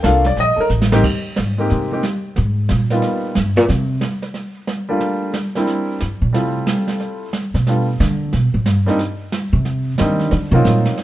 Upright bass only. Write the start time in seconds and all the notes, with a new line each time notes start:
0.04 C2
0.36 A#1
0.57 muted upright bass stroke
0.70 A1
1.39 G#2
1.71 C3
2.38 G#2
2.71 A#2
3.37 G2
3.57 A#2
3.69 C3
6.02 G2
6.22 A#2
6.35 C3
7.54 B2
8.00 D3
8.33 B2
8.54 A2
8.67 G2
9.53 C3
10.00 D#3
10.32 D3
10.51 C3
10.65 A#2